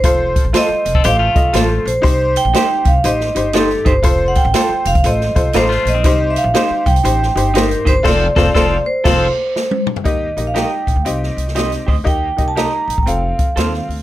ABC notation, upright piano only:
X:1
M:4/4
L:1/8
Q:"Swing" 1/4=120
K:Fmix
V:1 name="Upright piano"
[FAc] z [FAc] z [FAc] [FAe] [FAc] z | [EGc] z [EGc] z [EGc] [EGc] [EGA] z | [FAc] z [FAc] z [FAc] [FAc] [FAc] z | [EGc] z [EGc] z [EGc] [EGc] [EGc] z |
[FAc] [FAc] [FAc] z [FAc] z3 | [B,EGe] [B,EGe] [B,EGe] z [CEGe] z [CEGe] z | [B,EGe] [B,EGe] [B,EGe] z [CFAf] z [CFAf] z |]